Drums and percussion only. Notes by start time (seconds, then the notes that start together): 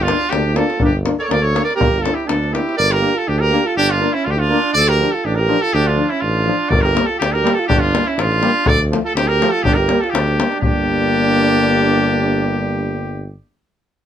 0.08 davul high
0.21 davul high
0.33 davul high
0.56 davul high
0.70 davul high
0.80 davul low
1.06 davul high
1.20 davul high
1.31 davul high
1.56 davul high
1.71 davul high
1.81 davul low
1.94 davul high
2.06 davul high
2.20 davul high
2.29 davul high
2.43 davul high
2.55 davul high
2.69 davul high
6.72 davul low
6.86 davul high
6.97 davul high
7.22 davul high
7.35 davul high
7.47 davul high
7.70 davul low
7.84 davul high
7.95 davul high
8.19 davul high
8.32 davul high
8.43 davul high
8.66 davul low
8.81 davul high
8.93 davul high
9.17 davul high
9.30 davul high
9.42 davul high
9.65 davul low
9.78 davul high
9.89 davul high
10.04 davul high
10.15 davul high
10.28 davul high
10.40 davul high
10.52 davul high
10.62 davul low